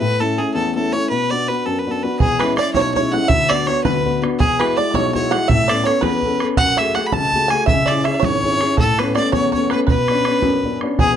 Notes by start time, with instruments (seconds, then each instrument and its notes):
0.00 upright piano A2, fiddle B4
0.20 upright piano A3 C#4 E4, fiddle A4
0.38 upright piano A3 C#4 E4, fiddle G#4
0.54 upright piano E2, fiddle A4
0.75 upright piano A3 C#4 E4, fiddle A4
0.93 upright piano A3 C#4 E4, fiddle C#5
1.09 upright piano B2, fiddle B4
1.30 upright piano B3 D4 F#4, fiddle D5
1.48 upright piano B3 D4 F#4, fiddle B4
1.65 upright piano F#2, fiddle A4
1.79 fiddle B4
1.87 upright piano B3 D4 F#4, fiddle A4
2.03 upright piano B3 D4 F#4, fiddle B4
2.19 upright piano E2, fiddle G#4, five-string banjo G#4, bodhran
2.39 upright piano G#3 C#4 E4, five-string banjo B4, fiddle B4, bodhran
2.57 upright piano G#3 C#4 E4, fiddle D5, five-string banjo D5, bodhran
2.73 upright piano B1, fiddle C#5, five-string banjo C#5, bodhran
2.94 upright piano G#3 C#4 E4, fiddle C#5, five-string banjo C#5, bodhran
3.11 upright piano G#3 C#4 E4, fiddle F#5, five-string banjo F#5
3.28 upright piano D2, five-string banjo E5, fiddle E5, bodhran
3.49 upright piano B3 D4 F#4, fiddle D5, five-string banjo D5, bodhran
3.66 upright piano B3 D4 F#4, fiddle C#5, five-string banjo C#5, bodhran
3.83 upright piano D2, fiddle B4, five-string banjo B4, bodhran
4.06 upright piano B3 D4 F#4, bodhran
4.22 upright piano B3 D4 F#4, bodhran
4.39 upright piano E2, fiddle G#4, five-string banjo G#4, bodhran
4.60 upright piano G#3 E4 F#4, fiddle B4, five-string banjo B4, bodhran
4.77 upright piano G#3 E4 F#4, fiddle D5, five-string banjo D5
4.91 upright piano B1, fiddle C#5, five-string banjo C#5 D5, bodhran
5.13 upright piano G#3 E4 F#4, five-string banjo C#5, fiddle C#5, bodhran
5.31 upright piano G#3 E4 F#4, five-string banjo F#5, fiddle F#5, bodhran
5.48 upright piano A2, five-string banjo E5, fiddle E5, bodhran
5.68 upright piano B3 C#4 A4, five-string banjo D5, fiddle D5, bodhran
5.84 upright piano B3 C#4 A4, five-string banjo C#5, fiddle C#5, bodhran
6.01 upright piano E2, five-string banjo B4, fiddle B4, bodhran
6.23 upright piano B3 C#4 A4, bodhran
6.40 upright piano B3 C#4 A4, bodhran
6.57 upright piano F#2, five-string banjo F#5, fiddle F#5, bodhran
6.77 upright piano A3 F#4, five-string banjo E5, fiddle E5, bodhran
6.81 upright piano G#4
6.95 upright piano A3 F#4 G#4, fiddle F#5, five-string banjo F#5, bodhran
7.06 fiddle B5
7.12 upright piano C#2, five-string banjo A5, fiddle A5, bodhran
7.33 upright piano A3 F#4 G#4, bodhran
7.48 upright piano A3, five-string banjo G#5, fiddle G#5, bodhran
7.53 upright piano F#4 G#4
7.66 upright piano C#2, five-string banjo E5, fiddle E5, bodhran
7.86 five-string banjo D5, fiddle D5, bodhran
7.91 upright piano C#4 E4 G#4
8.04 upright piano C#4 E4 G#4, five-string banjo E5, fiddle E5, bodhran
8.14 five-string banjo D5
8.20 five-string banjo C#5, bodhran
8.25 upright piano G#1, fiddle C#5
8.43 upright piano C#4 E4 G#4, bodhran
8.61 upright piano C#4 E4 G#4, bodhran
8.77 upright piano A2, five-string banjo A4, fiddle A4, bodhran
8.98 upright piano A3 B3 C#4, five-string banjo B4, fiddle B4, bodhran
9.15 upright piano A3 B3 C#4, five-string banjo D5, fiddle D5, bodhran
9.32 upright piano E2, five-string banjo C#5, fiddle C#5, bodhran
9.52 upright piano A3 B3 C#4, five-string banjo C#5, fiddle C#5, bodhran
9.70 upright piano A3 B3 C#4, five-string banjo B4, fiddle B4, bodhran
9.87 upright piano B2, five-string banjo B4, fiddle B4, bodhran
10.08 upright piano B3 C#4 D4, bodhran
10.25 upright piano B3 C#4 D4, bodhran
10.42 upright piano F#2, bodhran
10.64 upright piano B3 C#4 D4, bodhran
10.81 upright piano B3 C#4 D4, bodhran
10.99 upright piano E1 E2, five-string banjo G#4, fiddle G#4, bodhran